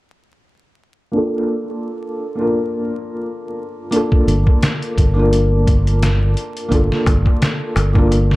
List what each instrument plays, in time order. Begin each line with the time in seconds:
1.12 felt piano A#3 D4 F4
1.17 felt piano A4
2.35 felt piano A#3 D4
2.39 felt piano F4 A#4
3.91 felt piano A#3 D4 F4, closed hi-hat
3.96 felt piano A4
4.12 kick
4.27 fingered electric bass G1, closed hi-hat
4.47 kick
4.62 snare, closed hi-hat
4.82 closed hi-hat
4.98 fingered electric bass G1, kick, closed hi-hat
5.14 felt piano A#3 D4 F4
5.19 felt piano A#4
5.33 closed hi-hat
5.67 kick, closed hi-hat
5.87 closed hi-hat
6.02 snare, closed hi-hat
6.37 closed hi-hat
6.57 closed hi-hat
6.68 fingered electric bass G1, felt piano A#3 D4 F4, kick, closed hi-hat, darbuka tek
6.74 felt piano A4
6.92 snare
7.06 fingered electric bass G1, kick, closed hi-hat, darbuka tek
7.26 kick, darbuka tek
7.42 snare, closed hi-hat, darbuka tek
7.76 fingered electric bass G1, closed hi-hat, darbuka tek
7.93 felt piano A#3 D4 F4, kick, darbuka tek
7.98 felt piano A#4
8.11 closed hi-hat, darbuka tek
8.31 snare